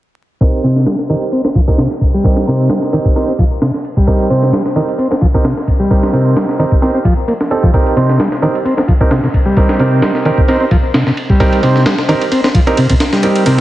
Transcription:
0.41 grand piano C4 D#4 G4 A#4, kick, ride
0.53 ride
0.64 transistor combo organ C3, grand piano C4 D#4 G4 C5, ride
0.76 snare
0.86 transistor combo organ G3, snare, ride
0.99 snare
1.09 transistor combo organ D#3, grand piano C4 D#4 G4 A#4, ride
1.22 ride
1.32 transistor combo organ C4, ride
1.45 transistor combo organ C4, snare
1.55 transistor combo organ F3, kick, ride
1.68 grand piano C4 D#4 G4 A#4, kick
1.78 transistor combo organ C3, snare, ride
1.91 snare
2.01 kick, ride
2.14 transistor combo organ G3
2.24 grand piano C4 D#4 G4 A#4, kick, ride
2.37 snare
2.47 transistor combo organ C3, grand piano C4 D#4 G4 A#4, ride
2.70 transistor combo organ G3, snare, ride
2.82 snare
2.93 transistor combo organ D#3, grand piano C4 D#4 G4 A#4, ride
3.05 kick
3.16 grand piano C4 D#4 G4 A#4, transistor combo organ C4, ride
3.28 transistor combo organ C4
3.39 transistor combo organ F3, kick, ride
3.62 transistor combo organ C3, snare, ride
3.74 snare
3.85 ride
3.97 transistor combo organ G3, kick
4.07 grand piano C4 D#4 G4 A#4, kick, ride
4.20 ride
4.30 transistor combo organ C3, grand piano C4 D#4 G4 C5, ride
4.43 snare
4.53 transistor combo organ G3, snare, ride
4.66 snare
4.76 transistor combo organ D#3, grand piano C4 D#4 G4 A#4, ride
4.88 ride
4.98 transistor combo organ C4, ride
5.11 transistor combo organ C4, snare
5.21 transistor combo organ F3, kick, ride
5.34 grand piano C4 D#4 G4 A#4, kick
5.44 transistor combo organ C3, snare, ride
5.57 snare
5.68 kick, ride
5.79 transistor combo organ G3
5.91 grand piano C4 D#4 G4 A#4, kick, ride
6.03 snare
6.13 transistor combo organ C3, grand piano C4 D#4 G4 A#4, ride
6.36 transistor combo organ G3, snare, ride
6.49 snare
6.59 transistor combo organ D#3, grand piano C4 D#4 G4 A#4, ride
6.72 kick
6.82 transistor combo organ C4, grand piano C4 D#4 G4 A#4, ride
6.94 transistor combo organ C4
7.04 transistor combo organ F3, kick, ride
7.28 transistor combo organ A#3, ride
7.41 snare
7.51 grand piano C4 D#4 G4 A4, ride
7.63 transistor combo organ F3, kick
7.74 grand piano C4 D#4 G4 A#4, kick, ride
7.86 ride
7.96 transistor combo organ C3, grand piano C4 D#4 G4 C5, ride
8.09 snare
8.19 transistor combo organ G3, snare, ride
8.32 snare
8.42 transistor combo organ D#3, grand piano C4 D#4 G4 A#4, ride
8.55 ride
8.65 transistor combo organ C4, ride
8.77 transistor combo organ C4, snare
8.88 transistor combo organ F3, kick, ride
9.01 grand piano C4 D#4 G4 A#4, kick
9.11 transistor combo organ C3, snare, ride
9.23 transistor combo organ C3, snare
9.34 kick, ride
9.46 transistor combo organ G3
9.57 grand piano C4 D#4 G4 A#4, kick, ride
9.69 snare
9.79 transistor combo organ C3, grand piano C4 D#4 G4 A#4, ride
10.02 transistor combo organ G3, snare, ride
10.15 snare
10.25 transistor combo organ D#3, grand piano C4 D#4 G4 A#4, ride
10.38 kick
10.48 transistor combo organ C4, grand piano C4 D#4 G4 A#4, ride
10.60 transistor combo organ C4
10.71 transistor combo organ F3, kick, ride
10.94 transistor combo organ C3, snare, ride
11.06 transistor combo organ C3, snare
11.17 ride
11.30 transistor combo organ G3, kick
11.40 grand piano C4 D#4 G4 A#4, kick, ride
11.53 ride
11.63 transistor combo organ C3, grand piano C4 D#4 G4 C5, ride
11.76 snare
11.86 transistor combo organ G3, snare, ride
11.98 snare
12.09 transistor combo organ D#3, grand piano C4 D#4 G4 A#4, ride
12.21 ride
12.32 transistor combo organ C4, ride
12.44 transistor combo organ C4, snare
12.54 transistor combo organ F3, kick, ride
12.67 grand piano C4 D#4 G4 A#4, ride
12.77 transistor combo organ C3, ride
12.89 transistor combo organ C3, kick, ride
13.00 snare, ride
13.13 transistor combo organ G3, snare
13.23 grand piano C4 D#4 G4 A#4, ride
13.36 ride
13.46 transistor combo organ C3, grand piano C4 D#4 G4 A#4, ride

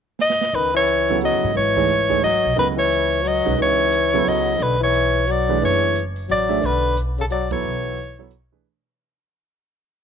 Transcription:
0.19 soprano saxophone D#5, snare
0.30 snare
0.41 snare
0.53 upright bass C#2, trombone D#3, soprano saxophone B4, open hi-hat
0.74 trombone E3, soprano saxophone C#5
0.87 closed hi-hat
1.08 grand piano C#3 F#3 B3 E4 A4, open hi-hat
1.21 trombone F#3, soprano saxophone D#5, closed hi-hat
1.33 upright bass F#2
1.44 upright bass G#2
1.54 upright bass G#1, trombone E3, soprano saxophone C#5, open hi-hat
1.76 grand piano E3 A3 D#4 G#4 C#5, kick
1.88 closed hi-hat
2.10 grand piano E3 A3 D#4 G#4 C#5, kick, open hi-hat
2.22 trombone F#3, soprano saxophone D#5, open hi-hat
2.45 upright bass B1
2.56 upright bass C#2, grand piano C#3 F#3 B3 E4 A4, trombone D#3, soprano saxophone B4, open hi-hat
2.76 trombone E3, soprano saxophone C#5
2.91 closed hi-hat
3.12 open hi-hat
3.24 trombone F#3, soprano saxophone D#5, closed hi-hat
3.45 upright bass B1, grand piano G#3 C#4 D#4 F#4 B4, open hi-hat
3.58 upright bass C#2, trombone E3, open hi-hat
3.62 soprano saxophone C#5
3.92 closed hi-hat
4.14 grand piano C#3 F#3 B3 E4 A4
4.26 upright bass C#2, trombone F#3, soprano saxophone D#5, open hi-hat
4.60 upright bass B1, trombone D3, soprano saxophone B4, open hi-hat
4.80 trombone E3, soprano saxophone C#5
4.94 closed hi-hat
5.27 trombone F#3, soprano saxophone D5, closed hi-hat
5.49 grand piano E3 A3 D4 G#4 B4
5.62 upright bass F#1, trombone E3, soprano saxophone C#5, open hi-hat
5.95 closed hi-hat
6.16 open hi-hat
6.29 upright bass A1, trombone F#3, soprano saxophone D5, open hi-hat
6.49 grand piano A3 D4 G#4 C#5 E5
6.63 upright bass B1, trombone D3, soprano saxophone B4, open hi-hat
6.97 closed hi-hat
7.18 trombone C#3, soprano saxophone A4, open hi-hat
7.31 trombone F#3, soprano saxophone D5, closed hi-hat
7.51 trombone E3, grand piano F#3 B3 E4 A4 C#5, soprano saxophone C#5, kick, ride
7.64 upright bass B1
7.97 open hi-hat
8.19 grand piano F#3 B3 E4 A4 C#5
8.31 closed hi-hat
8.52 grand piano E3 A3 D4 G#4 B4

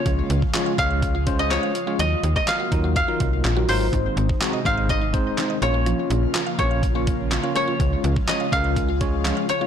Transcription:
Already playing: analog synth pad C#3 F3 F4, koto C#5
0.06 fm bass C#2, synth arpeggio sound F3, analog synth pad G#3, tine electric piano G#3 C#4 F4 C#5, kick, closed hi-hat
0.30 fm bass C#2, closed hi-hat
0.42 kick
0.54 tine electric piano G#3 C#4 F4 C#5, synth arpeggio sound F4, snare, clap, closed hi-hat
0.66 synth arpeggio sound F5
0.78 fm bass C#2, tine electric piano G#3 C#4 F4 C#5, koto F5, kick, closed hi-hat
0.91 synth arpeggio sound F5
1.02 kick, closed hi-hat
1.15 synth arpeggio sound F4
1.26 tine electric piano G#3 C#4 F4 C5, synth arpeggio sound C#4, kick, closed hi-hat
1.39 koto D#5
1.51 synth arpeggio sound F4, koto C#5, snare, clap, closed hi-hat
1.63 synth arpeggio sound F5
1.75 closed hi-hat
1.87 tine electric piano G#3 C#4 F4 C#5, synth arpeggio sound F4
1.99 fm bass D#2, analog synth pad D#3 F#3 A#3, synth arpeggio sound F#3, koto D#5, closed hi-hat
2.23 fm bass D#2, closed hi-hat
2.36 koto D#5, kick
2.48 synth arpeggio sound F4, koto F5, snare, clap, closed hi-hat
2.60 synth arpeggio sound F#4
2.72 fm bass D#2, tine electric piano F#3 D#4 F4 A#4, synth arpeggio sound F4, kick, closed hi-hat
2.84 synth arpeggio sound F#4
2.96 koto F5, kick, closed hi-hat
3.08 tine electric piano F#3 D#4 F4 A#4, synth arpeggio sound F4
3.20 fm bass C2, synth arpeggio sound D#4, kick, closed hi-hat
3.44 fm bass A#1, synth arpeggio sound F4, snare, clap, closed hi-hat
3.56 tine electric piano F#3 D#4 F4 A#4, synth arpeggio sound F#4
3.68 fm bass G#1, tine electric piano F#3 D#4 F4 A#4, koto C5, open hi-hat
3.81 synth arpeggio sound F4
3.92 fm bass G#1, analog synth pad C3 G#3 D#4, synth arpeggio sound D#3, tine electric piano G#3 C4 D#4 C5, kick, closed hi-hat
4.17 fm bass G#1, closed hi-hat
4.29 kick
4.41 tine electric piano G#3 C4 D#4 F#4, synth arpeggio sound D#4, snare, clap, closed hi-hat
4.53 synth arpeggio sound D#5
4.65 fm bass G#1, tine electric piano G#3 C4 D#4 C5, synth arpeggio sound D#4, koto F5, kick, closed hi-hat
4.77 synth arpeggio sound D#5
4.89 koto D#5, kick, closed hi-hat
5.01 synth arpeggio sound D#4
5.13 tine electric piano G#3 C4 D#4 C5, synth arpeggio sound C4, kick, closed hi-hat
5.38 synth arpeggio sound D#4, snare, clap, closed hi-hat
5.50 synth arpeggio sound D#5
5.62 fm bass A#1, analog synth pad C#3 F3 A#3 F4, tine electric piano A#3 C#4 F4 C#5, koto C#5, closed hi-hat
5.74 synth arpeggio sound F4
5.86 synth arpeggio sound F3, closed hi-hat
6.10 fm bass A#1, closed hi-hat
6.35 synth arpeggio sound F4, snare, clap, closed hi-hat
6.47 synth arpeggio sound F5
6.59 fm bass A#1, tine electric piano A#3 C#4 F4 C#5, synth arpeggio sound F4, koto C#5, kick, closed hi-hat
6.71 synth arpeggio sound F5
6.83 kick, closed hi-hat
6.95 tine electric piano A#3 C#4 F4 C#5, synth arpeggio sound F4
7.07 synth arpeggio sound C#4, kick, closed hi-hat
7.31 synth arpeggio sound F4, snare, clap, closed hi-hat
7.43 tine electric piano A#3 C#4 F4 C#5, synth arpeggio sound F5
7.55 tine electric piano A#3 C#4 F4 C#5, koto C#5, closed hi-hat
7.68 synth arpeggio sound F4
7.80 fm bass C#2, synth arpeggio sound F3, tine electric piano G#3 C#4 F4 C#5, analog synth pad G#3 F4, kick, closed hi-hat
8.04 fm bass C#2, closed hi-hat
8.16 kick
8.28 tine electric piano G#3 C#4 F4 C#5, synth arpeggio sound F4, koto D#5, snare, clap, closed hi-hat
8.40 synth arpeggio sound F5
8.52 fm bass C#2, tine electric piano G#3 C#4 F4 A#4, synth arpeggio sound F4, koto F5, kick, closed hi-hat
8.64 synth arpeggio sound F5
8.76 kick, closed hi-hat
8.89 synth arpeggio sound F4
9.01 tine electric piano G#3 C#4 F4 C#5, synth arpeggio sound C#4, kick, closed hi-hat
9.25 synth arpeggio sound F4, snare, clap, closed hi-hat
9.37 synth arpeggio sound F5
9.49 koto C#5, closed hi-hat
9.61 tine electric piano G#3 C#4 F4 C#5, synth arpeggio sound F4

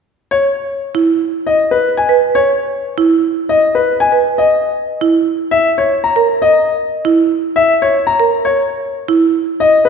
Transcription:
0.31 grand piano C#5
0.95 marimba E4
1.47 grand piano D#5
1.71 grand piano B4
1.97 grand piano G#5
2.09 marimba B4
2.35 grand piano C#5
2.98 marimba E4
3.49 grand piano D#5
3.75 grand piano B4
4.00 grand piano G#5
4.12 marimba B4
4.38 grand piano D#5
5.01 marimba E4
5.51 grand piano E5
5.78 grand piano C#5
6.04 grand piano A#5
6.16 marimba A#4
6.42 grand piano D#5
7.05 marimba E4
7.56 grand piano E5
7.82 grand piano C#5
8.07 grand piano A#5
8.20 marimba A#4
8.45 grand piano C#5
9.08 marimba E4
9.60 grand piano D#5
9.85 grand piano B4

